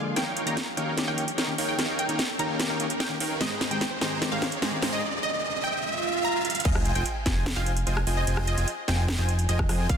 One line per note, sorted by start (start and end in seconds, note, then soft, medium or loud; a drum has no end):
0.00 0.13 D3 medium
0.00 0.13 F3 medium
0.00 0.14 G#3 medium
0.00 0.13 A#3 medium
0.00 0.14 A#3 medium
0.00 0.13 D4 medium
0.00 0.13 F4 medium
0.00 0.13 G#4 medium
0.00 0.15 G#4 loud
0.00 0.13 D5 medium
0.00 riser medium
0.15 0.22 D#3 medium
0.15 0.22 A#3 medium
0.15 3.37 A#3 medium
0.15 3.37 C#4 medium
0.15 0.22 C#4 medium
0.15 4.99 D#4 medium
0.15 0.44 D#4 medium
0.15 4.99 G4 medium
0.15 0.23 G4 medium
0.15 0.44 A#4 medium
0.15 3.37 C#5 medium
0.15 0.44 C#5 medium
0.15 0.44 F5 medium
0.15 0.44 G5 medium
0.15 0.36 G5 loud
0.15 snare soft
0.15 closed hi-hat medium
0.37 closed hi-hat medium
0.46 0.56 D#3 medium
0.46 0.56 A#3 medium
0.46 0.56 C#4 medium
0.46 0.57 D#4 loud
0.46 0.57 G4 loud
0.46 0.57 A#4 medium
0.46 0.57 C#5 medium
0.46 0.57 F5 medium
0.46 0.57 G5 loud
0.46 0.66 A#5 medium
0.46 closed hi-hat medium
0.57 snare soft
0.57 closed hi-hat medium
0.76 0.95 D#3 medium
0.76 0.95 A#3 medium
0.76 0.95 C#4 medium
0.76 0.93 D#4 medium
0.76 0.96 G4 medium
0.76 0.93 A#4 medium
0.76 0.93 C#5 medium
0.76 0.93 F5 medium
0.76 0.93 G5 medium
0.76 closed hi-hat medium
0.97 1.15 D#3 loud
0.97 1.15 A#3 medium
0.97 1.16 C#4 medium
0.97 1.16 G4 loud
0.97 snare medium
0.97 closed hi-hat medium
1.08 1.24 D#4 medium
1.08 1.24 A#4 medium
1.08 1.24 C#5 medium
1.08 1.24 F5 medium
1.08 1.24 G5 medium
1.08 1.27 G5 loud
1.17 1.23 D#3 medium
1.17 1.24 A#3 medium
1.17 1.24 C#4 medium
1.17 1.24 G4 medium
1.17 closed hi-hat medium
1.28 closed hi-hat medium
1.38 1.48 D#4 medium
1.38 1.48 A#4 medium
1.38 1.48 C#5 medium
1.38 1.48 F5 medium
1.38 1.48 G5 loud
1.38 snare medium
1.38 closed hi-hat medium
1.47 1.54 D#3 loud
1.47 1.54 A#3 medium
1.47 1.54 C#4 medium
1.47 1.55 G4 loud
1.58 1.76 D#4 loud
1.58 1.76 A#4 medium
1.58 1.76 C#5 medium
1.58 1.76 F5 medium
1.58 1.76 G5 loud
1.58 open hi-hat medium
1.69 1.88 G5 medium
1.78 1.84 D#3 medium
1.78 1.84 A#3 medium
1.78 1.85 C#4 medium
1.78 2.07 D#4 medium
1.78 1.85 G4 medium
1.78 2.07 A#4 medium
1.78 2.07 C#5 medium
1.78 2.07 F5 medium
1.78 2.07 G5 medium
1.78 snare medium
1.78 closed hi-hat medium
1.99 2.25 G5 loud
1.99 closed hi-hat medium
2.08 2.18 D#3 medium
2.08 2.18 A#3 medium
2.08 2.18 C#4 medium
2.08 2.19 D#4 loud
2.08 2.19 G4 loud
2.08 2.19 A#4 medium
2.08 2.19 C#5 medium
2.08 2.19 F5 medium
2.08 2.19 G5 loud
2.08 closed hi-hat medium
2.19 snare medium
2.19 closed hi-hat medium
2.38 2.57 D#3 medium
2.38 2.57 A#3 medium
2.38 2.57 C#4 medium
2.38 2.55 D#4 medium
2.38 2.58 G4 medium
2.38 2.55 A#4 medium
2.38 2.55 C#5 medium
2.38 2.55 F5 medium
2.38 2.55 G5 loud
2.38 2.59 A#5 medium
2.38 closed hi-hat medium
2.59 2.77 D#3 loud
2.59 2.77 A#3 medium
2.59 2.78 C#4 medium
2.59 2.78 G4 loud
2.59 snare medium
2.59 closed hi-hat medium
2.70 2.86 D#4 medium
2.70 2.86 A#4 medium
2.70 2.86 C#5 medium
2.70 2.86 F5 medium
2.70 2.86 G5 medium
2.79 2.85 D#3 medium
2.79 2.86 A#3 medium
2.79 2.86 C#4 medium
2.79 2.86 G4 loud
2.79 closed hi-hat medium
2.90 closed hi-hat medium
3.00 3.10 D#4 medium
3.00 3.10 A#4 medium
3.00 3.10 C#5 medium
3.00 3.10 F5 medium
3.00 3.10 G5 loud
3.00 3.26 G5 medium
3.00 snare medium
3.00 closed hi-hat medium
3.09 3.16 D#3 loud
3.09 3.16 A#3 medium
3.09 3.16 C#4 medium
3.09 3.17 G4 loud
3.20 3.38 D#4 loud
3.20 3.38 A#4 medium
3.20 3.38 C#5 medium
3.20 3.38 F5 medium
3.20 3.38 G5 loud
3.20 open hi-hat medium
3.40 3.46 D#3 medium
3.40 3.69 G#3 medium
3.40 3.47 G#3 medium
3.40 5.01 G#3 medium
3.40 5.01 C4 medium
3.40 3.47 C4 medium
3.40 3.47 G4 medium
3.40 3.69 G#4 medium
3.40 3.69 C5 medium
3.40 5.01 C5 medium
3.40 3.60 D#5 loud
3.40 3.69 G5 medium
3.40 3.69 A#5 medium
3.40 snare medium
3.40 closed hi-hat medium
3.61 snare medium
3.61 closed hi-hat medium
3.70 3.80 D#3 medium
3.70 3.80 G#3 medium
3.70 3.81 G#3 loud
3.70 3.81 C4 medium
3.70 3.81 G4 loud
3.70 3.81 G#4 medium
3.70 3.81 C5 medium
3.70 3.91 G5 medium
3.70 3.81 G5 medium
3.70 3.81 A#5 loud
3.70 closed hi-hat medium
3.81 snare medium
3.81 closed hi-hat medium
4.01 4.19 D#3 medium
4.01 4.17 G#3 medium
4.01 4.19 G#3 medium
4.01 4.20 C4 medium
4.01 4.20 G4 medium
4.01 4.17 G#4 medium
4.01 4.17 C5 medium
4.01 4.17 G5 medium
4.01 4.17 A#5 medium
4.01 snare medium
4.01 closed hi-hat medium
4.21 4.39 D#3 loud
4.21 4.40 G#3 medium
4.21 4.40 C4 medium
4.21 4.40 G4 loud
4.21 snare medium
4.21 closed hi-hat medium
4.32 4.48 G#3 medium
4.32 4.48 G#4 medium
4.32 4.48 C5 medium
4.32 4.51 F5 loud
4.32 4.48 G5 medium
4.32 4.48 A#5 medium
4.41 4.48 D#3 medium
4.41 4.48 G#3 medium
4.41 4.48 C4 medium
4.41 4.49 G4 loud
4.41 snare medium
4.41 closed hi-hat medium
4.52 closed hi-hat medium
4.62 4.72 G#3 medium
4.62 4.72 G#4 medium
4.62 4.72 C5 medium
4.62 4.72 G5 medium
4.62 4.72 A#5 loud
4.62 snare medium
4.62 closed hi-hat medium
4.71 4.78 D#3 loud
4.71 4.78 G#3 medium
4.71 4.78 C4 loud
4.71 4.79 G4 loud
4.82 5.01 G#3 loud
4.82 5.01 G#4 medium
4.82 5.01 C5 medium
4.82 5.01 G5 medium
4.82 5.01 A#5 loud
4.82 snare medium
4.82 open hi-hat loud
4.93 5.12 D#5 medium
5.23 5.49 D#5 loud
5.64 5.83 G5 medium
5.84 swell medium
6.25 6.50 A#5 medium
6.45 closed hi-hat medium
6.50 closed hi-hat medium
6.55 closed hi-hat medium
6.60 closed hi-hat medium
6.65 6.94 F1 loud
6.65 6.93 F4 medium
6.65 6.93 C5 medium
6.65 6.93 D#5 medium
6.65 6.85 D#5 loud
6.65 6.93 G5 medium
6.65 6.93 G#5 medium
6.65 kick loud
6.65 closed hi-hat medium
6.65 crash loud
6.65 sub drop medium
6.75 cross-stick medium
6.85 closed hi-hat medium
6.95 7.04 F1 loud
6.95 7.05 F4 medium
6.95 7.05 C5 medium
6.95 7.05 D#5 medium
6.95 7.15 G5 medium
6.95 7.05 G5 medium
6.95 7.05 G#5 loud
6.95 7.06 G#5 loud
6.95 closed hi-hat medium
7.06 closed hi-hat medium
7.26 7.54 F1 loud
7.26 7.42 F4 medium
7.26 7.42 C5 medium
7.26 7.42 D#5 medium
7.26 7.42 G5 medium
7.26 7.42 G#5 loud
7.26 kick medium
7.26 snare medium
7.26 closed hi-hat medium
7.46 snare loud
7.46 closed hi-hat medium
7.56 7.85 F1 loud
7.56 7.72 F4 medium
7.56 7.72 C5 medium
7.56 7.72 D#5 medium
7.56 7.76 F5 loud
7.56 7.72 G5 medium
7.56 7.72 G#5 medium
7.66 closed hi-hat medium
7.77 closed hi-hat medium
7.87 8.05 F1 medium
7.87 7.97 F4 medium
7.87 7.97 C5 medium
7.87 7.97 D#5 medium
7.87 7.97 G5 medium
7.87 7.97 G#5 loud
7.87 closed hi-hat medium
7.97 cross-stick medium
8.07 8.25 F1 loud
8.07 8.25 F4 loud
8.07 8.25 C5 medium
8.07 8.25 D#5 medium
8.07 8.25 G5 medium
8.07 8.25 G#5 loud
8.07 open hi-hat loud
8.17 8.37 D#5 medium
8.27 8.56 F1 loud
8.27 8.55 F4 medium
8.27 8.55 C5 medium
8.27 8.55 D#5 medium
8.27 8.55 G5 medium
8.27 8.55 G#5 medium
8.27 closed hi-hat medium
8.37 cross-stick medium
8.47 8.74 D#5 loud
8.47 closed hi-hat medium
8.58 8.66 F1 loud
8.58 8.68 F4 loud
8.58 8.68 C5 medium
8.58 8.68 D#5 medium
8.58 8.68 G5 medium
8.58 8.68 G#5 loud
8.58 closed hi-hat medium
8.68 closed hi-hat medium
8.88 9.17 F1 loud
8.88 9.04 F4 medium
8.88 9.04 C5 medium
8.88 9.04 D#5 medium
8.88 9.04 G5 medium
8.88 9.08 G5 medium
8.88 9.04 G#5 medium
8.88 9.04 G#5 loud
8.88 snare medium
8.88 closed hi-hat medium
9.08 snare loud
9.08 closed hi-hat medium
9.18 9.47 F1 loud
9.18 9.34 F4 medium
9.18 9.34 C5 medium
9.18 9.34 D#5 medium
9.18 9.34 G5 medium
9.18 9.34 G#5 medium
9.18 9.35 G#5 medium
9.29 closed hi-hat medium
9.39 closed hi-hat medium
9.49 9.67 F1 loud
9.49 9.59 F4 medium
9.49 9.59 C5 medium
9.49 9.75 D#5 medium
9.49 9.59 D#5 medium
9.49 9.59 G5 medium
9.49 9.59 G#5 loud
9.49 closed hi-hat medium
9.59 kick loud
9.59 cross-stick medium
9.69 9.87 F2 loud
9.69 9.87 F4 loud
9.69 9.87 C5 medium
9.69 9.87 D#5 medium
9.69 9.87 G5 medium
9.69 9.87 G#5 loud
9.69 cross-stick medium
9.69 open hi-hat loud
9.89 9.97 F1 loud
9.89 9.97 F5 loud
9.89 9.97 D6 medium
9.89 kick loud
9.89 closed hi-hat medium